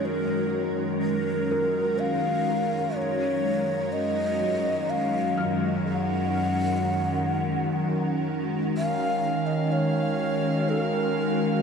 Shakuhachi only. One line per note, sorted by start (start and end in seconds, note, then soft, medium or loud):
0.05 0.75 A#4 medium
1.02 2.01 A#4 medium
1.99 2.98 F5 loud
2.96 3.94 C#5 loud
3.93 4.91 D#5 loud
4.90 5.60 F5 loud
5.88 8.25 F#5 loud
8.77 9.48 F5 loud
9.47 9.74 D#5 medium
9.72 10.71 C#5 loud
10.69 10.81 A4 medium
10.81 11.62 A#4 medium